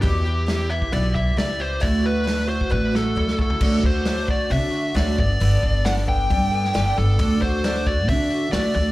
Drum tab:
CC |----------------|----------------|x---------------|----------------|
HH |o---o---o---o---|o---o-----------|----o---o---o---|o---o---o---o---|
SD |----o-------o---|----o-----o--o--|----o-------o---|----oo-----oo---|
T1 |----------------|--------o-------|----------------|----------------|
T2 |----------------|------------o---|----------------|----------------|
FT |----------------|---------------o|----------------|----------------|
BD |o------oo-o-----|o------oo-----o-|o-o---o-o-----o-|--o---o-o-------|

CC |----------------|
HH |o---o---o---o---|
SD |----o-------o---|
T1 |----------------|
T2 |----------------|
FT |----------------|
BD |o-o---o-o-------|